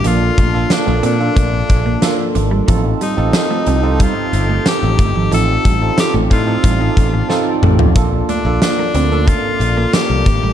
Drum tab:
HH |x-x-x-x-x-x-x-x-|x-x-x-x-x-x-x-x-|x-x-x-x-x-x-----|x-x-x-x-x-x-x-x-|
TB |----------------|----------------|----x-----------|----x-------x---|
SD |----o-------o---|----o-------o---|----o-------o---|----o-------o---|
T2 |----------------|----------------|--------------o-|----------------|
FT |----------------|----------------|---------------o|----------------|
BD |--o-----o-o-----|o-------o-----o-|--o---o-o-o-----|o-------o-----o-|